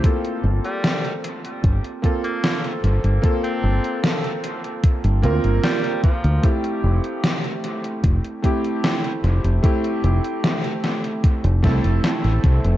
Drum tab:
HH |xx-xxxxxxxxxxxxx|xx-xxxxxxxxxxxxx|xx-xxxxxxxxxxxxx|xxxxxxxxxxxxxxxx|
SD |----o-------o---|----o-------o---|----o-------o---|----o-o---o-o---|
BD |o-------o-o-----|o-------o-----o-|o-------o-o-----|o-------o-o---o-|